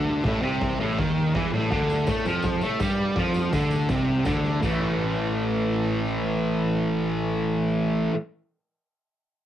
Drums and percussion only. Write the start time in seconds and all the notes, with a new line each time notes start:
0.24 kick, snare, open hi-hat
0.61 kick, snare, open hi-hat
0.98 kick, snare, open hi-hat
1.35 kick, snare, open hi-hat
1.72 kick, snare, open hi-hat
1.90 tambourine
2.07 kick, snare, open hi-hat, tambourine
2.25 tambourine
2.42 kick, snare, open hi-hat, tambourine
2.61 tambourine
2.80 kick, snare, open hi-hat, tambourine
3.16 kick, snare, open hi-hat, tambourine
3.34 tambourine
3.53 kick, snare, open hi-hat, tambourine
3.71 tambourine
3.89 kick, snare, open hi-hat, tambourine
4.25 kick, snare, open hi-hat, tambourine
4.44 snare, tambourine
4.62 kick, crash, tambourine